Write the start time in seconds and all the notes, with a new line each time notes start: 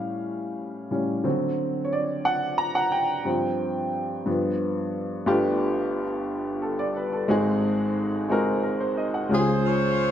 Already playing: A2 G3 C#4 F5
0.91 A2 G3 C#4
1.24 D3 F#3 C4
1.84 C#5
1.93 D5
2.25 F#5
2.58 A#5
2.75 F#5
2.92 G5
3.25 G2 F3 C4
4.26 G2 F3 B3
5.26 G1 G2 A3 B3 D4 F4 G4
6.62 A4
6.79 D5
6.96 B4
7.13 A4
7.28 G#1 G#2 G#3 C4 D#4 F#4 G#4
8.29 G#3 C4 D#4 F#4 A#4
8.63 A#4
8.80 C5
8.97 D#5
9.14 F#5
9.29 C#2 C#3 G#3 C#4 F4 G4 G#4 C5
9.34 F4
9.38 G#4
9.65 F4 G#4 C#5